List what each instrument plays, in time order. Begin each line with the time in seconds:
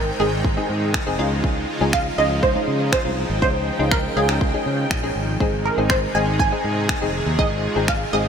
Already playing: fingered electric bass G#1, supersaw synth C3 D#3 G#3 D#4 G5, synth stab G#3 C4 D#4 G#4
0.20 fingered electric bass G#1, synth stab G#3 C4 D#4 G#4, synth pluck G#4
0.45 kick
0.57 synth stab G#3 C4 D#4 G#4
0.69 fingered electric bass G#2
0.94 finger snap, kick
1.06 fingered electric bass F1, synth stab G#3 C4 D#4 G#4
1.19 fingered electric bass C#2, supersaw synth C#3 F3 D#4 F4, synth stab G#3 C#4 D#4 F4
1.44 kick
1.81 fingered electric bass C#2, synth stab G#3 C#4 D#4 G#4
1.93 synth pluck F5, finger snap, kick
2.18 fingered electric bass C#2, synth stab G#3 C#4 D#4 F4, synth pluck D#5
2.43 synth pluck C5, kick
2.55 synth stab G#3 C#4 D#4 F4
2.68 fingered electric bass C#3
2.92 synth pluck C5, finger snap, kick
3.05 fingered electric bass C2, synth stab G#3 C#4 D#4 F4
3.17 supersaw synth G5
3.30 fingered electric bass G#1
3.42 fingered electric bass C#2, synth stab G#3 C#4 D#4 F4, synth pluck C5, kick
3.79 fingered electric bass C#2, synth stab G#3 C#4 D#4 F4
3.91 synth pluck A#4, finger snap, kick
4.16 fingered electric bass C#2, synth stab G#3 C#4 D#4 F4, synth pluck G#4
4.29 finger snap
4.41 kick
4.54 synth stab G#3 C#4 D#4 G#4
4.66 fingered electric bass C#3
4.91 fingered electric bass A#1, finger snap, kick
5.03 synth stab G#3 C#4 D#4 G#4
5.16 fingered electric bass G#1
5.40 fingered electric bass G#1, supersaw synth C3 D#3 G#3 D#4 G#4, synth stab G#3 C4 D#4 G#4, kick
5.65 synth pluck A#4
5.78 fingered electric bass G#1, synth stab G#3 C4 D#4 G#4
5.90 synth pluck C5, finger snap, kick
6.15 fingered electric bass G#1, synth stab G#3 C4 D#4 G#4, synth pluck G#5
6.39 synth pluck G#5, kick
6.52 synth stab G#3 C4 D#4 G#4
6.64 fingered electric bass G#2
6.89 finger snap, kick
7.01 fingered electric bass F1, synth stab G#3 C4 D#4 G#4
7.26 fingered electric bass D#2
7.39 fingered electric bass G#1, synth stab G#3 C4 D#4 G#4, supersaw synth F4, synth pluck D#5, kick
7.76 fingered electric bass G#1, synth stab G#3 C4 D#4 G#4
7.88 synth pluck F5, finger snap, kick
8.13 fingered electric bass G#1, synth stab G#3 C4 D#4 G#4, synth pluck D#5